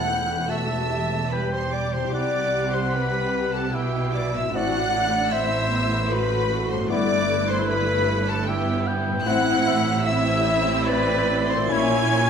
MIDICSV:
0, 0, Header, 1, 11, 480
1, 0, Start_track
1, 0, Key_signature, 1, "minor"
1, 0, Tempo, 815217
1, 1253, Time_signature, 3, 2, 24, 8
1, 2202, Tempo, 790514
1, 6042, Tempo, 818554
1, 7353, End_track
2, 0, Start_track
2, 0, Title_t, "Violin section"
2, 0, Program_c, 0, 48
2, 0, Note_on_c, 0, 90, 108
2, 292, Note_off_c, 0, 90, 0
2, 296, Note_on_c, 0, 88, 100
2, 771, Note_on_c, 0, 83, 96
2, 776, Note_off_c, 0, 88, 0
2, 892, Note_off_c, 0, 83, 0
2, 898, Note_on_c, 0, 84, 91
2, 1014, Note_off_c, 0, 84, 0
2, 1018, Note_on_c, 0, 86, 99
2, 1134, Note_on_c, 0, 84, 93
2, 1136, Note_off_c, 0, 86, 0
2, 1248, Note_on_c, 0, 86, 105
2, 1251, Note_off_c, 0, 84, 0
2, 1604, Note_off_c, 0, 86, 0
2, 1606, Note_on_c, 0, 84, 96
2, 1719, Note_on_c, 0, 83, 112
2, 1724, Note_off_c, 0, 84, 0
2, 2079, Note_off_c, 0, 83, 0
2, 2086, Note_on_c, 0, 81, 100
2, 2202, Note_on_c, 0, 79, 102
2, 2203, Note_off_c, 0, 81, 0
2, 2444, Note_off_c, 0, 79, 0
2, 2445, Note_on_c, 0, 86, 102
2, 2564, Note_off_c, 0, 86, 0
2, 2576, Note_on_c, 0, 88, 88
2, 2688, Note_on_c, 0, 90, 118
2, 2689, Note_off_c, 0, 88, 0
2, 3151, Note_off_c, 0, 90, 0
2, 3154, Note_on_c, 0, 88, 113
2, 3632, Note_off_c, 0, 88, 0
2, 3634, Note_on_c, 0, 83, 123
2, 3999, Note_off_c, 0, 83, 0
2, 4005, Note_on_c, 0, 84, 103
2, 4116, Note_on_c, 0, 86, 125
2, 4123, Note_off_c, 0, 84, 0
2, 4471, Note_off_c, 0, 86, 0
2, 4478, Note_on_c, 0, 84, 109
2, 4592, Note_on_c, 0, 83, 124
2, 4599, Note_off_c, 0, 84, 0
2, 4951, Note_off_c, 0, 83, 0
2, 4966, Note_on_c, 0, 81, 121
2, 5074, Note_on_c, 0, 79, 110
2, 5083, Note_off_c, 0, 81, 0
2, 5315, Note_off_c, 0, 79, 0
2, 5549, Note_on_c, 0, 90, 127
2, 6013, Note_off_c, 0, 90, 0
2, 6031, Note_on_c, 0, 88, 127
2, 6497, Note_off_c, 0, 88, 0
2, 6502, Note_on_c, 0, 83, 127
2, 6880, Note_off_c, 0, 83, 0
2, 6880, Note_on_c, 0, 84, 112
2, 7005, Note_on_c, 0, 92, 127
2, 7006, Note_off_c, 0, 84, 0
2, 7353, Note_off_c, 0, 92, 0
2, 7353, End_track
3, 0, Start_track
3, 0, Title_t, "Oboe"
3, 0, Program_c, 1, 68
3, 50, Note_on_c, 1, 79, 73
3, 294, Note_on_c, 1, 81, 100
3, 303, Note_off_c, 1, 79, 0
3, 783, Note_on_c, 1, 79, 92
3, 792, Note_off_c, 1, 81, 0
3, 1258, Note_off_c, 1, 79, 0
3, 1262, Note_on_c, 1, 78, 101
3, 2207, Note_on_c, 1, 76, 94
3, 2217, Note_off_c, 1, 78, 0
3, 2698, Note_on_c, 1, 74, 94
3, 2707, Note_off_c, 1, 76, 0
3, 3165, Note_on_c, 1, 72, 109
3, 3174, Note_off_c, 1, 74, 0
3, 3958, Note_off_c, 1, 72, 0
3, 4125, Note_on_c, 1, 71, 105
3, 5083, Note_on_c, 1, 76, 109
3, 5092, Note_off_c, 1, 71, 0
3, 5322, Note_on_c, 1, 79, 117
3, 5331, Note_off_c, 1, 76, 0
3, 5565, Note_on_c, 1, 78, 110
3, 5574, Note_off_c, 1, 79, 0
3, 5806, Note_on_c, 1, 76, 116
3, 5815, Note_off_c, 1, 78, 0
3, 6511, Note_off_c, 1, 76, 0
3, 6514, Note_on_c, 1, 74, 108
3, 7017, Note_on_c, 1, 73, 110
3, 7026, Note_off_c, 1, 74, 0
3, 7353, Note_off_c, 1, 73, 0
3, 7353, End_track
4, 0, Start_track
4, 0, Title_t, "Flute"
4, 0, Program_c, 2, 73
4, 0, Note_on_c, 2, 78, 102
4, 285, Note_off_c, 2, 78, 0
4, 288, Note_on_c, 2, 76, 89
4, 761, Note_off_c, 2, 76, 0
4, 764, Note_on_c, 2, 71, 81
4, 896, Note_on_c, 2, 72, 79
4, 905, Note_off_c, 2, 71, 0
4, 1014, Note_on_c, 2, 74, 92
4, 1022, Note_off_c, 2, 72, 0
4, 1132, Note_on_c, 2, 72, 81
4, 1141, Note_off_c, 2, 74, 0
4, 1252, Note_off_c, 2, 72, 0
4, 1258, Note_on_c, 2, 74, 92
4, 1612, Note_on_c, 2, 72, 78
4, 1620, Note_off_c, 2, 74, 0
4, 1726, Note_on_c, 2, 71, 89
4, 1734, Note_off_c, 2, 72, 0
4, 2087, Note_on_c, 2, 69, 84
4, 2095, Note_off_c, 2, 71, 0
4, 2197, Note_on_c, 2, 67, 82
4, 2206, Note_off_c, 2, 69, 0
4, 2442, Note_on_c, 2, 74, 85
4, 2451, Note_off_c, 2, 67, 0
4, 2569, Note_on_c, 2, 76, 77
4, 2578, Note_off_c, 2, 74, 0
4, 2674, Note_off_c, 2, 76, 0
4, 2677, Note_on_c, 2, 78, 120
4, 3158, Note_on_c, 2, 76, 106
4, 3167, Note_off_c, 2, 78, 0
4, 3471, Note_off_c, 2, 76, 0
4, 3626, Note_on_c, 2, 71, 98
4, 3997, Note_on_c, 2, 72, 87
4, 4006, Note_off_c, 2, 71, 0
4, 4111, Note_on_c, 2, 74, 118
4, 4120, Note_off_c, 2, 72, 0
4, 4476, Note_off_c, 2, 74, 0
4, 4480, Note_on_c, 2, 72, 100
4, 4592, Note_on_c, 2, 71, 111
4, 4601, Note_off_c, 2, 72, 0
4, 4969, Note_on_c, 2, 69, 105
4, 4978, Note_off_c, 2, 71, 0
4, 5088, Note_on_c, 2, 67, 92
4, 5097, Note_off_c, 2, 69, 0
4, 5322, Note_off_c, 2, 67, 0
4, 5559, Note_on_c, 2, 78, 125
4, 6035, Note_on_c, 2, 76, 121
4, 6044, Note_off_c, 2, 78, 0
4, 6508, Note_on_c, 2, 71, 127
4, 6517, Note_off_c, 2, 76, 0
4, 6878, Note_on_c, 2, 72, 101
4, 6887, Note_off_c, 2, 71, 0
4, 7000, Note_off_c, 2, 72, 0
4, 7004, Note_on_c, 2, 80, 127
4, 7353, Note_off_c, 2, 80, 0
4, 7353, End_track
5, 0, Start_track
5, 0, Title_t, "Violin section"
5, 0, Program_c, 3, 48
5, 0, Note_on_c, 3, 78, 102
5, 286, Note_off_c, 3, 78, 0
5, 288, Note_on_c, 3, 76, 96
5, 772, Note_off_c, 3, 76, 0
5, 772, Note_on_c, 3, 71, 82
5, 890, Note_on_c, 3, 72, 83
5, 893, Note_off_c, 3, 71, 0
5, 1008, Note_on_c, 3, 74, 85
5, 1010, Note_off_c, 3, 72, 0
5, 1131, Note_off_c, 3, 74, 0
5, 1131, Note_on_c, 3, 72, 79
5, 1246, Note_on_c, 3, 74, 95
5, 1252, Note_off_c, 3, 72, 0
5, 1603, Note_off_c, 3, 74, 0
5, 1606, Note_on_c, 3, 72, 84
5, 1724, Note_off_c, 3, 72, 0
5, 1725, Note_on_c, 3, 71, 96
5, 2082, Note_off_c, 3, 71, 0
5, 2084, Note_on_c, 3, 69, 80
5, 2202, Note_off_c, 3, 69, 0
5, 2203, Note_on_c, 3, 67, 87
5, 2445, Note_off_c, 3, 67, 0
5, 2447, Note_on_c, 3, 74, 85
5, 2561, Note_on_c, 3, 76, 77
5, 2565, Note_off_c, 3, 74, 0
5, 2678, Note_on_c, 3, 78, 116
5, 2682, Note_off_c, 3, 76, 0
5, 3145, Note_off_c, 3, 78, 0
5, 3150, Note_on_c, 3, 76, 113
5, 3630, Note_off_c, 3, 76, 0
5, 3635, Note_on_c, 3, 71, 109
5, 3994, Note_on_c, 3, 72, 86
5, 3999, Note_off_c, 3, 71, 0
5, 4118, Note_off_c, 3, 72, 0
5, 4119, Note_on_c, 3, 74, 106
5, 4472, Note_off_c, 3, 74, 0
5, 4480, Note_on_c, 3, 72, 103
5, 4597, Note_on_c, 3, 71, 117
5, 4600, Note_off_c, 3, 72, 0
5, 4953, Note_off_c, 3, 71, 0
5, 4957, Note_on_c, 3, 69, 99
5, 5079, Note_off_c, 3, 69, 0
5, 5080, Note_on_c, 3, 67, 102
5, 5318, Note_off_c, 3, 67, 0
5, 5557, Note_on_c, 3, 78, 119
5, 6017, Note_off_c, 3, 78, 0
5, 6037, Note_on_c, 3, 76, 127
5, 6508, Note_on_c, 3, 71, 126
5, 6509, Note_off_c, 3, 76, 0
5, 6883, Note_off_c, 3, 71, 0
5, 6888, Note_on_c, 3, 72, 102
5, 7008, Note_on_c, 3, 80, 127
5, 7010, Note_off_c, 3, 72, 0
5, 7353, Note_off_c, 3, 80, 0
5, 7353, End_track
6, 0, Start_track
6, 0, Title_t, "Viola section"
6, 0, Program_c, 4, 48
6, 0, Note_on_c, 4, 57, 78
6, 0, Note_on_c, 4, 64, 77
6, 267, Note_off_c, 4, 64, 0
6, 291, Note_on_c, 4, 66, 77
6, 532, Note_on_c, 4, 67, 73
6, 533, Note_off_c, 4, 66, 0
6, 751, Note_off_c, 4, 57, 0
6, 768, Note_off_c, 4, 67, 0
6, 774, Note_on_c, 4, 55, 78
6, 775, Note_on_c, 4, 67, 86
6, 1250, Note_off_c, 4, 55, 0
6, 1257, Note_on_c, 4, 55, 86
6, 2178, Note_off_c, 4, 67, 0
6, 2184, Note_off_c, 4, 55, 0
6, 2203, Note_on_c, 4, 64, 86
6, 2204, Note_on_c, 4, 59, 74
6, 2681, Note_on_c, 4, 62, 87
6, 2681, Note_on_c, 4, 66, 90
6, 2684, Note_off_c, 4, 64, 0
6, 2685, Note_off_c, 4, 59, 0
6, 2915, Note_off_c, 4, 66, 0
6, 2922, Note_on_c, 4, 64, 80
6, 3147, Note_off_c, 4, 64, 0
6, 3154, Note_on_c, 4, 60, 95
6, 3155, Note_on_c, 4, 64, 87
6, 3156, Note_off_c, 4, 62, 0
6, 3391, Note_on_c, 4, 59, 81
6, 3393, Note_off_c, 4, 60, 0
6, 3623, Note_off_c, 4, 64, 0
6, 3627, Note_off_c, 4, 59, 0
6, 3627, Note_on_c, 4, 66, 91
6, 3628, Note_on_c, 4, 57, 100
6, 4117, Note_off_c, 4, 66, 0
6, 4119, Note_on_c, 4, 64, 98
6, 5076, Note_off_c, 4, 64, 0
6, 5078, Note_off_c, 4, 57, 0
6, 5081, Note_on_c, 4, 59, 99
6, 5083, Note_on_c, 4, 64, 96
6, 5550, Note_off_c, 4, 64, 0
6, 5557, Note_on_c, 4, 64, 109
6, 5558, Note_off_c, 4, 59, 0
6, 5559, Note_on_c, 4, 60, 107
6, 6017, Note_off_c, 4, 64, 0
6, 6018, Note_off_c, 4, 60, 0
6, 6040, Note_on_c, 4, 60, 123
6, 6040, Note_on_c, 4, 64, 117
6, 6988, Note_off_c, 4, 60, 0
6, 6989, Note_off_c, 4, 64, 0
6, 7011, Note_on_c, 4, 61, 109
6, 7011, Note_on_c, 4, 64, 111
6, 7353, Note_off_c, 4, 61, 0
6, 7353, Note_off_c, 4, 64, 0
6, 7353, End_track
7, 0, Start_track
7, 0, Title_t, "French horn section"
7, 0, Program_c, 5, 60
7, 1249, Note_on_c, 5, 55, 82
7, 1250, Note_on_c, 5, 64, 77
7, 1423, Note_off_c, 5, 55, 0
7, 1424, Note_off_c, 5, 64, 0
7, 2674, Note_on_c, 5, 64, 83
7, 2676, Note_on_c, 5, 60, 86
7, 2850, Note_off_c, 5, 64, 0
7, 2852, Note_off_c, 5, 60, 0
7, 4120, Note_on_c, 5, 64, 92
7, 4121, Note_on_c, 5, 59, 99
7, 4295, Note_off_c, 5, 64, 0
7, 4296, Note_off_c, 5, 59, 0
7, 5556, Note_on_c, 5, 60, 105
7, 5559, Note_on_c, 5, 64, 104
7, 5733, Note_off_c, 5, 60, 0
7, 5735, Note_off_c, 5, 64, 0
7, 6997, Note_on_c, 5, 64, 112
7, 6999, Note_on_c, 5, 61, 107
7, 7176, Note_off_c, 5, 64, 0
7, 7178, Note_off_c, 5, 61, 0
7, 7353, End_track
8, 0, Start_track
8, 0, Title_t, "Harp"
8, 0, Program_c, 6, 46
8, 0, Note_on_c, 6, 52, 67
8, 0, Note_on_c, 6, 59, 58
8, 0, Note_on_c, 6, 64, 55
8, 0, Note_on_c, 6, 67, 57
8, 1148, Note_on_c, 6, 48, 72
8, 1174, Note_on_c, 6, 60, 60
8, 1193, Note_off_c, 6, 64, 0
8, 1200, Note_on_c, 6, 64, 56
8, 1218, Note_off_c, 6, 52, 0
8, 1220, Note_off_c, 6, 67, 0
8, 1227, Note_on_c, 6, 67, 56
8, 2011, Note_off_c, 6, 59, 0
8, 2565, Note_on_c, 6, 45, 70
8, 2586, Note_off_c, 6, 60, 0
8, 2594, Note_on_c, 6, 60, 63
8, 2613, Note_off_c, 6, 64, 0
8, 2620, Note_on_c, 6, 64, 61
8, 2648, Note_off_c, 6, 48, 0
8, 2648, Note_on_c, 6, 69, 63
8, 2689, Note_off_c, 6, 67, 0
8, 4007, Note_on_c, 6, 43, 83
8, 4033, Note_on_c, 6, 59, 70
8, 4053, Note_off_c, 6, 64, 0
8, 4061, Note_on_c, 6, 64, 65
8, 4080, Note_off_c, 6, 45, 0
8, 4088, Note_on_c, 6, 71, 74
8, 4095, Note_off_c, 6, 60, 0
8, 4122, Note_off_c, 6, 69, 0
8, 5447, Note_on_c, 6, 45, 94
8, 5475, Note_on_c, 6, 60, 82
8, 5496, Note_off_c, 6, 64, 0
8, 5503, Note_on_c, 6, 64, 72
8, 5521, Note_off_c, 6, 43, 0
8, 5530, Note_on_c, 6, 69, 74
8, 5534, Note_off_c, 6, 59, 0
8, 5562, Note_off_c, 6, 71, 0
8, 6899, Note_on_c, 6, 46, 95
8, 6925, Note_on_c, 6, 61, 76
8, 6944, Note_off_c, 6, 64, 0
8, 6951, Note_on_c, 6, 64, 81
8, 6974, Note_off_c, 6, 45, 0
8, 6979, Note_on_c, 6, 66, 80
8, 6988, Note_off_c, 6, 60, 0
8, 7014, Note_off_c, 6, 69, 0
8, 7353, Note_off_c, 6, 46, 0
8, 7353, Note_off_c, 6, 61, 0
8, 7353, Note_off_c, 6, 64, 0
8, 7353, Note_off_c, 6, 66, 0
8, 7353, End_track
9, 0, Start_track
9, 0, Title_t, "Cello section"
9, 0, Program_c, 7, 48
9, 0, Note_on_c, 7, 40, 78
9, 1231, Note_off_c, 7, 40, 0
9, 1254, Note_on_c, 7, 48, 82
9, 2197, Note_on_c, 7, 47, 85
9, 2201, Note_off_c, 7, 48, 0
9, 2681, Note_off_c, 7, 47, 0
9, 2681, Note_on_c, 7, 45, 85
9, 4095, Note_off_c, 7, 45, 0
9, 4120, Note_on_c, 7, 43, 98
9, 5558, Note_off_c, 7, 43, 0
9, 5560, Note_on_c, 7, 45, 99
9, 6986, Note_off_c, 7, 45, 0
9, 7008, Note_on_c, 7, 46, 121
9, 7353, Note_off_c, 7, 46, 0
9, 7353, End_track
10, 0, Start_track
10, 0, Title_t, "Timpani"
10, 0, Program_c, 8, 47
10, 0, Note_on_c, 8, 40, 105
10, 513, Note_off_c, 8, 40, 0
10, 7353, End_track
11, 0, Start_track
11, 0, Title_t, "Double bass section"
11, 0, Program_c, 10, 48
11, 0, Note_on_c, 10, 28, 76
11, 1228, Note_off_c, 10, 28, 0
11, 1253, Note_on_c, 10, 36, 77
11, 2194, Note_on_c, 10, 35, 80
11, 2201, Note_off_c, 10, 36, 0
11, 2680, Note_off_c, 10, 35, 0
11, 2681, Note_on_c, 10, 33, 89
11, 4095, Note_off_c, 10, 33, 0
11, 4113, Note_on_c, 10, 31, 96
11, 5552, Note_on_c, 10, 33, 104
11, 5555, Note_off_c, 10, 31, 0
11, 6982, Note_off_c, 10, 33, 0
11, 7006, Note_on_c, 10, 34, 120
11, 7353, Note_off_c, 10, 34, 0
11, 7353, End_track
0, 0, End_of_file